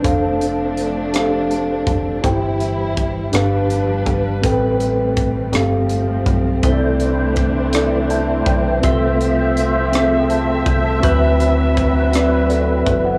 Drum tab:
HH |xxxxxx|xxxxxx|xxxxxx|xxxxxx|
SD |---r--|---r--|---r--|--rr--|
BD |o----o|o-o--o|o-o--o|o-o--o|

HH |xxxxxx|xxxxxx|
SD |---r--|---r--|
BD |o----o|o-o--o|